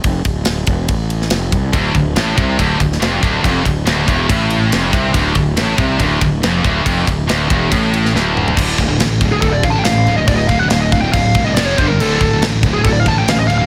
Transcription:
0.04 fingered electric bass F1, kick, ride
0.25 fingered electric bass D1, kick, ride
0.45 fingered electric bass D1, snare, ride
0.67 fingered electric bass E1, kick, ride
0.88 fingered electric bass A1, kick, ride
1.10 ride
1.22 snare
1.30 fingered electric bass F1, snare, ride
1.52 fingered electric bass C2, kick, ride
1.73 fingered electric bass D1, distorted electric guitar D2, kick, ride
1.95 fingered electric bass D1, distorted electric guitar D2, kick, ride
2.16 fingered electric bass A1, distorted electric guitar A2, snare, ride
2.37 fingered electric bass C2, distorted electric guitar C3, kick, ride
2.59 fingered electric bass D1, distorted electric guitar D2, kick, ride
2.80 fingered electric bass D1, distorted electric guitar D2, kick, ride
2.92 snare
3.00 fingered electric bass F1, distorted electric guitar F2, snare, ride
3.23 fingered electric bass D1, distorted electric guitar D2, kick, ride
3.44 fingered electric bass F1, distorted electric guitar F2, kick, ride
3.65 fingered electric bass D1, distorted electric guitar D2, kick, ride
3.87 fingered electric bass D1, distorted electric guitar D2, snare, ride
4.08 fingered electric bass E1, distorted electric guitar E2, kick, ride
4.29 fingered electric bass A1, distorted electric guitar A2, kick, ride
4.50 ride
4.72 fingered electric bass F1, distorted electric guitar F2, snare, ride
4.93 fingered electric bass C2, distorted electric guitar C3, kick, ride
5.14 fingered electric bass D1, distorted electric guitar D2, kick, ride
5.35 fingered electric bass D1, distorted electric guitar D2, kick, ride
5.57 fingered electric bass A1, distorted electric guitar A2, snare, ride
5.78 fingered electric bass C2, distorted electric guitar C3, kick, ride
6.00 fingered electric bass D1, distorted electric guitar D2, kick, ride
6.21 fingered electric bass D1, distorted electric guitar D2, kick, ride
6.43 fingered electric bass F1, distorted electric guitar F2, snare, ride
6.64 fingered electric bass D1, distorted electric guitar D2, kick, ride
6.86 fingered electric bass F1, distorted electric guitar F2, kick, ride
7.07 fingered electric bass D1, distorted electric guitar D2, kick, ride
7.29 fingered electric bass D1, distorted electric guitar D2, snare, ride
7.50 fingered electric bass E1, distorted electric guitar E2, kick, ride
7.71 fingered electric bass A1, distorted electric guitar A2, kick, ride
7.94 ride
8.05 snare
8.14 fingered electric bass D1, distorted electric guitar D2, snare
8.37 mid tom
8.48 floor tom
8.56 fingered electric bass D1, distorted electric guitar D2 A2 D3, kick, crash
8.78 fingered electric bass D1, distorted electric guitar D2 A2, kick, crash
8.88 distorted electric guitar D2 A2
9.00 fingered electric bass A1, distorted electric guitar D2 A2, snare, crash
9.21 fingered electric bass D1, distorted electric guitar D2 A2, kick, crash
9.32 distorted electric guitar D2 A2, lead electric guitar G#4
9.41 fingered electric bass D1, distorted electric guitar D2 A2, lead electric guitar A4, kick, crash
9.53 lead electric guitar D5
9.63 fingered electric bass A1, distorted electric guitar D2 A2, lead electric guitar F5, kick, crash
9.70 lead electric guitar A5
9.75 distorted electric guitar D2 A2, lead electric guitar G5
9.85 fingered electric bass A1, distorted electric guitar D2 A2, lead electric guitar F5, snare, crash
10.07 fingered electric bass D1, distorted electric guitar D2 A2, crash
10.16 distorted electric guitar D2 A2, lead electric guitar D#5
10.28 fingered electric bass D1, distorted electric guitar D2 A2, lead electric guitar D5, kick, crash
10.36 lead electric guitar D#5
10.47 fingered electric bass D1, distorted electric guitar D2 A2, lead electric guitar F5, kick, crash
10.59 distorted electric guitar A2, lead electric guitar F#5
10.63 distorted electric guitar D2
10.69 fingered electric bass D1, distorted electric guitar D2, lead electric guitar F5, snare, crash
10.73 distorted electric guitar A2
10.80 lead electric guitar D#5
10.92 distorted electric guitar D2 A2, lead electric guitar F5, kick, crash
11.01 distorted electric guitar D2 A2, lead electric guitar G5
11.13 fingered electric bass D1, distorted electric guitar D2 A2, lead electric guitar F5, kick, crash
11.34 fingered electric bass C2, distorted electric guitar D2 A2, kick, crash
11.45 distorted electric guitar D2 A2, lead electric guitar D#5
11.55 fingered electric bass F1, distorted electric guitar F2 C3 F3, lead electric guitar D5, snare, crash
11.66 lead electric guitar C#5
11.77 fingered electric bass G1, distorted electric guitar G2 D3 G3, lead electric guitar C5, kick, crash
11.88 distorted electric guitar G2 D3, lead electric guitar A#4
11.99 fingered electric bass D1, distorted electric guitar D2 A2 D3, lead electric guitar A4, crash
12.21 fingered electric bass D1, distorted electric guitar D2 A2, kick, crash
12.34 distorted electric guitar D2 A2
12.41 fingered electric bass A1, distorted electric guitar D2 A2, snare, crash
12.63 fingered electric bass D1, distorted electric guitar D2 A2, kick, crash
12.74 distorted electric guitar D2 A2, lead electric guitar G#4
12.84 fingered electric bass D1, distorted electric guitar D2 A2, lead electric guitar A4, kick, crash
12.93 lead electric guitar D5
13.00 lead electric guitar F5
13.06 fingered electric bass A1, distorted electric guitar D2 A2, lead electric guitar A5, kick, crash
13.19 distorted electric guitar D2 A2, lead electric guitar G5
13.28 fingered electric bass A1, distorted electric guitar D2 A2, lead electric guitar F5, snare, crash
13.39 lead electric guitar D#5
13.48 fingered electric bass D1, distorted electric guitar D2 A2, lead electric guitar F5, crash
13.58 distorted electric guitar D2 A2, lead electric guitar F5

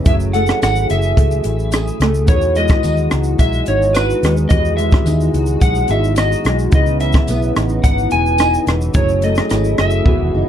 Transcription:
Already playing: steel-string acoustic guitar B3 D#4
0.04 fingered electric bass F#1, french horn section E3 A3 G#4, steel-string acoustic guitar F#3, synth keys A3 C#4 E4, electric slide guitar E5, kick, closed hi-hat, shaker
0.09 synth keys G#4
0.20 shaker
0.33 steel-string acoustic guitar A3, electric slide guitar F#5, closed hi-hat, shaker
0.47 cross-stick, shaker
0.62 fingered electric bass G#1, steel-string acoustic guitar E4, electric slide guitar F#5, cross-stick, closed hi-hat, tambourine, shaker
0.76 shaker
0.90 fingered electric bass F#1, steel-string acoustic guitar G#4, electric slide guitar E5, closed hi-hat, shaker
1.02 shaker
1.17 fingered electric bass C#2, steel-string acoustic guitar A3, kick, closed hi-hat, shaker
1.31 shaker
1.44 fingered electric bass A1, steel-string acoustic guitar E4, closed hi-hat, shaker
1.59 shaker
1.72 steel-string acoustic guitar G#4, cross-stick, closed hi-hat, tambourine, shaker
1.88 shaker
2.00 fingered electric bass C#2, steel-string acoustic guitar A3, cross-stick, closed hi-hat, shaker
2.14 shaker
2.26 fingered electric bass E2, steel-string acoustic guitar E3, french horn section F#3 G#3 F#4, synth keys B3 D#4 F#4, electric slide guitar C#5, kick, closed hi-hat, shaker
2.31 synth keys G#4
2.42 shaker
2.56 steel-string acoustic guitar G#3, electric slide guitar D#5, closed hi-hat, shaker
2.68 kick, cross-stick, shaker
2.83 fingered electric bass D#2, steel-string acoustic guitar D#4, closed hi-hat, tambourine, shaker
2.97 shaker
3.11 fingered electric bass C#2, steel-string acoustic guitar F#4, cross-stick, closed hi-hat, shaker
3.24 shaker
3.39 fingered electric bass B1, steel-string acoustic guitar G#3, electric slide guitar E5, kick, closed hi-hat, shaker
3.53 shaker
3.66 fingered electric bass G#1, steel-string acoustic guitar D#4, electric slide guitar C#5, closed hi-hat, shaker
3.82 shaker
3.94 steel-string acoustic guitar F#4, electric slide guitar B4, cross-stick, closed hi-hat, tambourine, shaker
4.10 shaker
4.23 fingered electric bass D#2, steel-string acoustic guitar G#3, cross-stick, closed hi-hat, shaker
4.37 shaker
4.49 fingered electric bass E2, synth keys D#3 B3 F#4, steel-string acoustic guitar E3, french horn section G#4, electric slide guitar D#5, kick, closed hi-hat, shaker
4.54 synth keys G4
4.60 synth keys G#4
4.65 shaker
4.77 steel-string acoustic guitar G#3, electric slide guitar E5, closed hi-hat, shaker
4.91 kick, cross-stick, shaker
5.06 fingered electric bass D#2, steel-string acoustic guitar D#4, closed hi-hat, tambourine, shaker
5.21 shaker
5.34 fingered electric bass C#2, steel-string acoustic guitar F#4, closed hi-hat, shaker
5.46 shaker
5.61 fingered electric bass B1, steel-string acoustic guitar G#3, electric slide guitar F#5, kick, closed hi-hat, shaker
5.75 shaker
5.88 fingered electric bass G#1, synth keys B3 D#4 F#4 G#4, steel-string acoustic guitar D#4, electric slide guitar E5, closed hi-hat, shaker
6.04 shaker
6.16 steel-string acoustic guitar F#4, electric slide guitar D#5, cross-stick, closed hi-hat, tambourine, shaker
6.32 shaker
6.45 fingered electric bass B1, steel-string acoustic guitar G#3, cross-stick, closed hi-hat, shaker
6.59 shaker
6.70 fingered electric bass C#2, steel-string acoustic guitar C#3, french horn section E3 B3, synth keys B3 C#4 E4, kick, closed hi-hat, shaker
6.75 synth keys G#4, electric slide guitar D#5
6.86 shaker
7.00 steel-string acoustic guitar E3, electric slide guitar E5, closed hi-hat, shaker
7.13 kick, cross-stick, shaker
7.27 fingered electric bass B1, steel-string acoustic guitar B3, closed hi-hat, tambourine, shaker
7.42 shaker
7.56 fingered electric bass A1, steel-string acoustic guitar D#4, cross-stick, closed hi-hat, shaker
7.69 shaker
7.84 fingered electric bass G#1, steel-string acoustic guitar E3, electric slide guitar F#5, kick, closed hi-hat, shaker
7.98 shaker
8.11 fingered electric bass E1, steel-string acoustic guitar B3, electric slide guitar G#5, closed hi-hat, shaker
8.26 shaker
8.38 steel-string acoustic guitar D#4, cross-stick, closed hi-hat, tambourine, shaker
8.54 shaker
8.67 fingered electric bass E1, steel-string acoustic guitar E3, cross-stick, closed hi-hat, shaker
8.81 shaker
8.93 fingered electric bass F#1, french horn section E3 A3 G#4, steel-string acoustic guitar F#3, synth keys A3 C#4 E4, electric slide guitar C#5, kick, closed hi-hat, shaker
8.98 synth keys G#4
9.09 shaker
9.22 steel-string acoustic guitar A3, electric slide guitar D#5, closed hi-hat, shaker
9.35 cross-stick, shaker
9.49 fingered electric bass G#1, steel-string acoustic guitar E4, cross-stick, closed hi-hat, tambourine, shaker
9.64 shaker
9.78 fingered electric bass F#1, steel-string acoustic guitar G#4, electric slide guitar E5, cross-stick, closed hi-hat, shaker
9.91 shaker
10.04 fingered electric bass E1, synth keys D#3 B3 F#4, steel-string acoustic guitar E3, french horn section F#3 G#3 F#4, kick
10.09 synth keys G#4
10.20 fingered electric bass E1
10.34 fingered electric bass F#1, steel-string acoustic guitar D#4

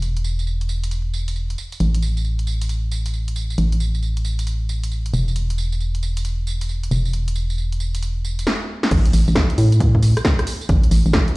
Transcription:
Already playing: fm bass E1
0.02 closed hi-hat, tambourine
0.17 closed hi-hat
0.24 tambourine
0.39 tambourine
0.47 tambourine
0.61 closed hi-hat
0.69 tambourine
0.83 closed hi-hat, tambourine
0.91 closed hi-hat, tambourine
1.14 tambourine
1.28 closed hi-hat, tambourine
1.36 tambourine
1.50 closed hi-hat
1.58 tambourine
1.72 closed hi-hat, tambourine
1.80 fm bass A1, closed hi-hat, tambourine
1.95 closed hi-hat
2.02 tambourine
2.17 tambourine
2.25 tambourine
2.39 closed hi-hat
2.47 tambourine
2.61 closed hi-hat, tambourine
2.69 closed hi-hat, tambourine
2.91 tambourine
3.06 closed hi-hat, tambourine
3.14 tambourine
3.28 closed hi-hat
3.36 tambourine
3.50 tambourine
3.58 fm bass A1, closed hi-hat, tambourine
3.72 closed hi-hat
3.80 tambourine
3.95 tambourine
4.02 tambourine
4.17 closed hi-hat
4.25 tambourine
4.39 closed hi-hat, tambourine
4.47 closed hi-hat, tambourine
4.69 tambourine
4.83 closed hi-hat, tambourine
4.92 tambourine
5.06 closed hi-hat
5.14 fm bass E1, tambourine
5.28 tambourine
5.36 closed hi-hat, tambourine
5.50 closed hi-hat
5.58 tambourine
5.72 tambourine
5.80 tambourine
5.95 closed hi-hat
6.03 tambourine
6.17 closed hi-hat, tambourine
6.25 closed hi-hat, tambourine
6.47 tambourine
6.61 closed hi-hat, tambourine
6.69 tambourine
6.83 closed hi-hat
6.91 fm bass E1, tambourine
7.06 tambourine
7.13 closed hi-hat, tambourine
7.28 closed hi-hat
7.36 tambourine
7.50 tambourine
7.58 tambourine
7.72 closed hi-hat
7.80 tambourine
7.95 closed hi-hat, tambourine
8.03 closed hi-hat, tambourine
8.25 tambourine
8.39 closed hi-hat, tambourine
8.47 snare
8.83 snare
8.91 fm bass A1, kick, closed hi-hat, tambourine, crash
9.06 closed hi-hat
9.13 fm bass A1, open hi-hat, tambourine
9.28 fm bass A1, tambourine
9.36 kick, cross-stick, snare
9.50 closed hi-hat
9.58 fm bass A2, open hi-hat, tambourine
9.72 closed hi-hat, tambourine
9.80 kick, closed hi-hat, tambourine
9.95 kick
10.03 open hi-hat, tambourine
10.17 cross-stick, closed hi-hat, tambourine
10.25 kick, snare, tambourine
10.39 cross-stick, closed hi-hat
10.47 open hi-hat, tambourine
10.61 tambourine
10.69 fm bass A1, kick, closed hi-hat, tambourine
10.84 closed hi-hat
10.91 fm bass A1, open hi-hat, tambourine
11.06 fm bass A1, tambourine
11.13 kick, cross-stick, snare
11.28 closed hi-hat

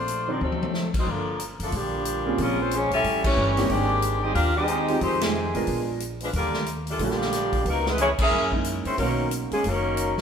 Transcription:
Already playing: upright bass A#1, saxophone section A3 D4 F4 C5
0.08 closed hi-hat
0.28 saxophone section F3 C4 D4 A#4, grand piano F#3 C4 D4 D#4 C5
0.41 upright bass D2, trombone section C3 F#3 A3, saxophone section F#3 C4 D#4 A4, high tom
0.52 high tom
0.63 high tom
0.74 snare
0.94 trombone section F#3 A3 C4, saxophone section A3 D#4 F#4 C5, kick, crash
1.07 upright bass G1, trombone section D3 F3 A#3, saxophone section F3 D4 A4 A#4, kick
1.39 closed hi-hat
1.60 upright bass F#1, saxophone section F3 A#3 D4 A4, trombone section F3 A3, open hi-hat
1.64 trombone section D3
1.72 upright bass A#1, saxophone section F3 A#3 D4 G4, kick, open hi-hat
1.77 trombone section A#2 D3 G3
2.05 closed hi-hat
2.26 grand piano A#3 C4 C#4 F4 G#4
2.38 upright bass A#1, trombone section C#3 F3 A#3, saxophone section G#3 C#4 F4 A#4, kick, open hi-hat
2.60 saxophone section G#3 C#4 F4 C5, trombone section C4
2.71 trombone section F3 G#3 C#4, saxophone section A#3 F4 G#4 C#5, closed hi-hat
2.91 upright bass A#1, trombone section G3 C#4 E4, saxophone section C#4 G4 A4 E5, open hi-hat
3.04 upright bass A1, kick, open hi-hat
3.24 trombone section E3 G3 C#4, saxophone section A3 E4 G4 C#5, kick, crash
3.37 upright bass G1
3.57 grand piano G#3 A#3 C4 D#4 G4, snare, open hi-hat
3.69 upright bass G#1, trombone section D#3 G#3 D4, saxophone section C4 G4 G#4 D5, kick, open hi-hat
4.02 closed hi-hat
4.22 trombone section G3 C4 D#4, saxophone section C4 G4 G#4 D#5
4.34 upright bass D#2, saxophone section D4 G4 A#4 F5, trombone section F4, kick, open hi-hat
4.56 trombone section G#3 C4 D#4, saxophone section C4 G4 G#4 D#5
4.68 closed hi-hat
4.88 grand piano G#3 C4 D#4 F4 G4, open hi-hat
5.01 upright bass F2, trombone section D#3 G#3 C4, saxophone section G#3 D#4 G4 C5, kick, open hi-hat
5.21 trombone section C3 D#3 G#3, saxophone section D#3 C4 G4 G#4, snare, ride
5.54 upright bass A1, grand piano G#3 B3 D4 F4 A#4, open hi-hat
5.67 upright bass A#1, kick, open hi-hat
6.00 closed hi-hat
6.20 trombone section F3 G#3 B3, saxophone section G#3 D4 F4 B4, open hi-hat
6.33 upright bass D#2, trombone section D3 G3 A#3, saxophone section G3 D4 F4 A#4, kick, open hi-hat
6.53 snare
6.66 closed hi-hat
6.87 trombone section A#2 D3 A3, saxophone section G3 D4 F4 A4, open hi-hat
6.99 upright bass A#1, trombone section A#2 D3 G3, saxophone section F3 A#3 D4 G4, grand piano G3 A#3 D4 F4 A4, kick, open hi-hat
7.10 snare
7.21 snare
7.32 snare, closed hi-hat
7.53 kick, open hi-hat
7.66 upright bass C#2, saxophone section F#3 B3 D#4 A#4, trombone section A#3, kick, open hi-hat
7.86 trombone section E3 G#3 B3, saxophone section G#3 D#4 E4 B4, snare
7.98 trombone section E3 G#3 C#4, saxophone section B3 E4 G#4 C#5, closed hi-hat
8.19 trombone section A#3 C#4 E4, saxophone section C#4 G#4 A#4 E5, muted upright bass stroke, kick, crash
8.31 upright bass F#2
8.51 grand piano G#3 A#3 C#4 D#4 E4, kick
8.64 closed hi-hat
8.85 saxophone section G#3 C#4 E4 C5, trombone section C4, muted upright bass stroke, open hi-hat
8.97 upright bass B1, trombone section D#3 F#3 A#3, saxophone section F#3 C#4 D#4 A#4, grand piano A#3 B3 C#4 D#4 F#4, kick, open hi-hat
9.31 closed hi-hat
9.51 saxophone section F3 A#3 C#4 G#4, trombone section G#3, muted upright bass stroke, open hi-hat
9.64 upright bass F#1, trombone section D#3 F#3 A#3, saxophone section F#3 C#4 D#4 A#4, kick, open hi-hat
9.97 closed hi-hat
10.18 upright bass C#2, snare

